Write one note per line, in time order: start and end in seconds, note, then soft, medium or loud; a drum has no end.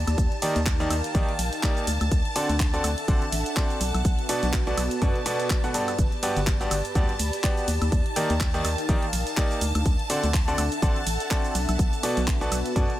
0.00 1.87 D#4 medium
0.00 0.72 G4 medium
0.00 0.72 D5 medium
0.00 0.72 A5 medium
0.00 5.98 A5 medium
0.07 0.16 D#2 loud
0.07 closed hi-hat medium
0.07 high woodblock medium
0.07 shaker soft
0.18 0.29 D#2 loud
0.18 kick loud
0.18 closed hi-hat medium
0.18 shaker soft
0.32 closed hi-hat soft
0.42 0.57 D#3 medium
0.42 0.57 A#3 medium
0.42 0.57 D#4 medium
0.42 0.57 G4 medium
0.42 0.57 D5 loud
0.42 open hi-hat loud
0.42 ride medium
0.42 shaker medium
0.55 0.87 D#2 medium
0.55 1.87 A#4 medium
0.55 closed hi-hat medium
0.55 shaker soft
0.66 kick loud
0.66 clap loud
0.66 closed hi-hat medium
0.66 shaker soft
0.80 0.92 D#3 medium
0.80 0.92 A#3 medium
0.80 0.92 D#4 medium
0.80 0.92 G4 medium
0.80 0.92 D5 loud
0.80 1.87 F5 medium
0.80 1.87 G5 medium
0.80 closed hi-hat soft
0.80 shaker soft
0.90 1.02 D#2 medium
0.90 open hi-hat loud
0.90 ride medium
0.90 high woodblock medium
0.90 shaker medium
1.04 closed hi-hat medium
1.04 shaker soft
1.15 1.26 A#1 medium
1.15 1.30 D#3 medium
1.15 1.30 A#3 medium
1.15 1.30 D#4 medium
1.15 1.30 G4 medium
1.15 1.30 D5 loud
1.15 kick loud
1.15 closed hi-hat medium
1.15 shaker soft
1.28 closed hi-hat soft
1.39 1.50 A#1 medium
1.39 open hi-hat loud
1.39 ride medium
1.39 shaker medium
1.53 closed hi-hat medium
1.53 shaker soft
1.63 1.85 A#3 medium
1.63 1.85 D#4 medium
1.63 1.85 G4 medium
1.63 1.85 D5 loud
1.63 kick loud
1.63 clap loud
1.63 closed hi-hat medium
1.63 shaker soft
1.77 closed hi-hat soft
1.77 shaker soft
1.87 1.98 D2 medium
1.87 4.69 D4 medium
1.87 open hi-hat loud
1.87 ride medium
1.87 shaker medium
2.01 2.09 D2 loud
2.01 closed hi-hat medium
2.01 high woodblock medium
2.01 shaker soft
2.11 2.23 D2 loud
2.11 kick loud
2.11 closed hi-hat medium
2.11 shaker soft
2.25 closed hi-hat soft
2.36 2.51 D3 loud
2.36 2.51 C4 medium
2.36 2.51 F#4 medium
2.36 2.51 A4 medium
2.36 2.51 D5 loud
2.36 open hi-hat loud
2.36 ride medium
2.36 shaker medium
2.43 4.69 A4 medium
2.49 2.81 D2 medium
2.49 closed hi-hat medium
2.49 shaker soft
2.60 kick loud
2.60 clap loud
2.60 closed hi-hat medium
2.60 shaker soft
2.74 2.86 D3 medium
2.74 2.86 C4 medium
2.74 2.86 F#4 medium
2.74 2.86 A4 medium
2.74 2.86 D5 loud
2.74 4.46 E5 medium
2.74 4.69 F#5 medium
2.74 closed hi-hat soft
2.74 shaker soft
2.84 2.95 D2 medium
2.84 open hi-hat loud
2.84 ride medium
2.84 high woodblock medium
2.84 shaker medium
2.98 closed hi-hat medium
2.98 shaker soft
3.08 3.19 A1 medium
3.08 3.23 D3 medium
3.08 3.23 C4 medium
3.08 3.23 F#4 medium
3.08 3.23 A4 medium
3.08 3.23 D5 loud
3.08 kick loud
3.08 closed hi-hat medium
3.08 shaker soft
3.22 closed hi-hat soft
3.32 3.43 A1 medium
3.32 open hi-hat loud
3.32 ride medium
3.32 shaker medium
3.46 closed hi-hat medium
3.46 shaker soft
3.57 3.79 C4 medium
3.57 3.79 F#4 medium
3.57 3.79 A4 medium
3.57 3.79 D5 loud
3.57 kick loud
3.57 clap loud
3.57 closed hi-hat medium
3.57 shaker soft
3.70 closed hi-hat soft
3.70 shaker soft
3.81 3.92 B1 medium
3.81 6.67 B3 medium
3.81 open hi-hat loud
3.81 ride medium
3.81 shaker medium
3.94 4.03 B1 loud
3.94 closed hi-hat medium
3.94 high woodblock medium
3.94 shaker soft
4.02 4.16 B1 loud
4.02 5.99 F#4 medium
4.02 6.67 B4 medium
4.02 kick loud
4.02 closed hi-hat soft
4.02 shaker soft
4.19 closed hi-hat soft
4.29 4.44 B2 medium
4.29 4.44 B3 medium
4.29 4.44 F#4 medium
4.29 4.44 A4 medium
4.29 4.44 D5 loud
4.29 open hi-hat loud
4.29 ride medium
4.29 shaker medium
4.43 4.74 B1 medium
4.43 closed hi-hat medium
4.43 shaker soft
4.53 kick loud
4.53 clap loud
4.53 closed hi-hat medium
4.53 shaker soft
4.67 4.79 B2 medium
4.67 4.79 B3 medium
4.67 4.79 F#4 medium
4.67 4.79 A4 medium
4.67 4.79 D5 loud
4.67 closed hi-hat soft
4.67 shaker soft
4.77 4.89 B1 medium
4.77 8.46 D5 medium
4.77 open hi-hat loud
4.77 ride medium
4.77 high woodblock medium
4.77 shaker medium
4.91 closed hi-hat medium
4.91 shaker soft
5.02 5.13 F#2 medium
5.02 5.17 B2 medium
5.02 5.17 B3 medium
5.02 5.17 F#4 medium
5.02 5.17 A4 medium
5.02 5.17 D5 loud
5.02 kick loud
5.02 closed hi-hat soft
5.02 shaker soft
5.15 closed hi-hat soft
5.26 5.48 B2 medium
5.26 5.48 B3 medium
5.26 5.48 F#4 medium
5.26 5.48 A4 medium
5.26 5.48 D5 loud
5.26 open hi-hat loud
5.26 ride medium
5.26 shaker medium
5.40 closed hi-hat soft
5.40 shaker soft
5.50 kick loud
5.50 clap loud
5.50 closed hi-hat soft
5.50 shaker soft
5.64 5.73 B2 medium
5.64 5.73 B3 medium
5.64 5.73 F#4 medium
5.64 5.73 A4 medium
5.64 5.73 F#5 medium
5.64 closed hi-hat soft
5.64 shaker soft
5.74 5.89 G2 medium
5.74 5.89 B3 medium
5.74 5.89 F#4 medium
5.74 5.89 A4 medium
5.74 5.89 D5 loud
5.74 open hi-hat loud
5.74 ride medium
5.74 shaker medium
5.88 closed hi-hat medium
5.88 high woodblock medium
5.88 shaker soft
5.99 6.10 G1 loud
5.99 8.46 G4 medium
5.99 13.00 A5 medium
5.99 kick loud
5.99 closed hi-hat soft
5.99 shaker soft
6.12 closed hi-hat soft
6.20 6.38 G2 medium
6.20 6.38 B3 medium
6.20 6.38 F#4 medium
6.20 6.38 G4 medium
6.20 6.38 D5 loud
6.20 8.46 A5 medium
6.20 open hi-hat loud
6.20 ride medium
6.20 shaker medium
6.37 6.68 G1 medium
6.37 closed hi-hat medium
6.37 shaker soft
6.47 kick loud
6.47 clap loud
6.47 closed hi-hat medium
6.47 shaker soft
6.61 6.73 G2 medium
6.61 6.73 B3 medium
6.61 6.73 F#4 medium
6.61 6.73 G4 medium
6.61 6.73 D5 loud
6.61 closed hi-hat soft
6.61 shaker soft
6.71 6.82 G1 medium
6.71 open hi-hat medium
6.71 ride medium
6.71 high woodblock medium
6.71 shaker medium
6.75 7.68 B5 medium
6.85 closed hi-hat medium
6.85 shaker soft
6.95 7.06 D2 medium
6.95 7.10 G2 medium
6.95 7.10 B3 medium
6.95 7.10 F#4 medium
6.95 7.10 G4 medium
6.95 7.10 D5 loud
6.95 kick loud
6.95 closed hi-hat medium
6.95 shaker soft
7.09 closed hi-hat soft
7.19 7.31 D2 medium
7.19 open hi-hat loud
7.19 ride medium
7.19 shaker medium
7.33 closed hi-hat medium
7.33 shaker soft
7.44 7.66 B3 medium
7.44 7.66 F#4 medium
7.44 7.66 G4 medium
7.44 7.66 D5 loud
7.44 kick loud
7.44 clap loud
7.44 closed hi-hat medium
7.44 shaker soft
7.57 closed hi-hat soft
7.57 shaker soft
7.68 7.79 D#2 medium
7.68 9.61 D#4 medium
7.68 open hi-hat medium
7.68 ride medium
7.68 shaker medium
7.82 7.90 D#2 loud
7.82 closed hi-hat medium
7.82 high woodblock medium
7.82 shaker soft
7.92 8.03 D#2 loud
7.92 kick loud
7.92 closed hi-hat medium
7.92 shaker soft
8.04 9.61 G5 medium
8.04 closed hi-hat soft
8.16 8.31 D#3 medium
8.16 8.31 A#3 medium
8.16 8.31 D#4 medium
8.16 8.31 G4 medium
8.16 8.31 D5 loud
8.16 open hi-hat loud
8.16 ride medium
8.16 shaker medium
8.30 8.61 D#2 medium
8.30 closed hi-hat medium
8.30 shaker soft
8.37 9.61 A#4 medium
8.37 kick loud
8.37 clap loud
8.37 closed hi-hat medium
8.37 shaker soft
8.54 8.66 D#3 medium
8.54 8.66 A#3 medium
8.54 8.66 D#4 medium
8.54 8.66 G4 medium
8.54 8.66 D5 loud
8.54 9.61 F5 medium
8.54 closed hi-hat soft
8.54 shaker soft
8.65 8.76 D#2 medium
8.65 open hi-hat medium
8.65 ride medium
8.65 high woodblock medium
8.65 shaker medium
8.78 closed hi-hat medium
8.78 shaker soft
8.89 9.00 A#1 medium
8.89 9.04 D#3 medium
8.89 9.04 A#3 medium
8.89 9.04 D#4 medium
8.89 9.04 G4 medium
8.89 9.04 D5 loud
8.89 kick loud
8.89 closed hi-hat medium
8.89 shaker soft
9.03 closed hi-hat soft
9.13 9.24 A#1 medium
9.13 open hi-hat loud
9.13 ride medium
9.13 shaker medium
9.27 closed hi-hat medium
9.27 shaker soft
9.37 9.59 A#3 medium
9.37 9.59 D#4 medium
9.37 9.59 G4 medium
9.37 9.59 D5 loud
9.37 kick loud
9.37 clap loud
9.37 closed hi-hat medium
9.37 shaker soft
9.51 closed hi-hat soft
9.51 shaker soft
9.61 9.73 D2 medium
9.61 12.43 D4 medium
9.61 open hi-hat medium
9.61 ride medium
9.61 shaker medium
9.75 9.84 D2 loud
9.75 closed hi-hat medium
9.75 high woodblock medium
9.75 shaker soft
9.86 9.97 D2 loud
9.86 kick loud
9.86 closed hi-hat medium
9.86 shaker soft
9.91 12.43 E5 medium
9.99 closed hi-hat soft
10.10 10.25 D3 medium
10.10 10.25 C4 medium
10.10 10.25 F#4 medium
10.10 10.25 A4 medium
10.10 10.25 D5 loud
10.10 open hi-hat loud
10.10 ride medium
10.10 shaker medium
10.23 10.55 D2 medium
10.23 12.43 A4 medium
10.23 closed hi-hat medium
10.23 shaker soft
10.34 kick loud
10.34 clap loud
10.34 closed hi-hat medium
10.34 shaker soft
10.48 10.60 D3 medium
10.48 10.60 C4 medium
10.48 10.60 F#4 medium
10.48 10.60 A4 medium
10.48 10.60 D5 loud
10.48 12.43 F#5 medium
10.48 closed hi-hat soft
10.48 shaker soft
10.58 10.69 D2 medium
10.58 open hi-hat medium
10.58 ride medium
10.58 high woodblock medium
10.58 shaker medium
10.72 closed hi-hat medium
10.72 shaker soft
10.82 10.93 A1 medium
10.82 10.97 D3 medium
10.82 10.97 C4 medium
10.82 10.97 F#4 medium
10.82 10.97 A4 medium
10.82 10.97 D5 loud
10.82 kick loud
10.82 closed hi-hat medium
10.82 shaker soft
10.96 closed hi-hat soft
11.07 11.18 A1 medium
11.07 open hi-hat loud
11.07 ride medium
11.07 shaker medium
11.20 closed hi-hat medium
11.20 shaker soft
11.31 11.53 C4 medium
11.31 11.53 F#4 medium
11.31 11.53 A4 medium
11.31 11.53 D5 loud
11.31 kick loud
11.31 clap loud
11.31 closed hi-hat medium
11.31 shaker soft
11.45 closed hi-hat soft
11.45 shaker soft
11.55 11.66 B1 medium
11.55 13.00 B3 medium
11.55 open hi-hat medium
11.55 ride medium
11.55 shaker medium
11.69 11.77 B1 loud
11.69 closed hi-hat medium
11.69 high woodblock medium
11.69 shaker soft
11.79 11.90 B1 loud
11.79 kick loud
11.79 closed hi-hat medium
11.79 shaker soft
11.91 13.00 B4 medium
11.91 closed hi-hat soft
11.91 shaker soft
12.03 12.18 B2 medium
12.03 12.18 B3 medium
12.03 12.18 F#4 medium
12.03 13.00 F#4 medium
12.03 12.18 A4 medium
12.03 12.18 D5 loud
12.03 open hi-hat loud
12.03 ride medium
12.03 shaker medium
12.17 12.49 B1 medium
12.17 closed hi-hat medium
12.17 shaker soft
12.28 kick loud
12.28 clap loud
12.28 closed hi-hat medium
12.28 shaker soft
12.41 12.53 B2 medium
12.41 12.53 B3 medium
12.41 12.53 F#4 medium
12.41 12.53 A4 medium
12.41 12.53 D5 loud
12.41 closed hi-hat soft
12.41 shaker soft
12.52 12.63 B1 medium
12.52 13.00 D5 medium
12.52 open hi-hat medium
12.52 ride medium
12.52 high woodblock medium
12.52 shaker medium
12.66 closed hi-hat medium
12.66 shaker soft
12.76 12.87 F#2 medium
12.76 12.91 B2 medium
12.76 12.91 B3 medium
12.76 12.91 F#4 medium
12.76 12.91 A4 medium
12.76 12.91 D5 loud
12.76 kick loud
12.76 closed hi-hat medium
12.76 shaker soft
12.90 closed hi-hat soft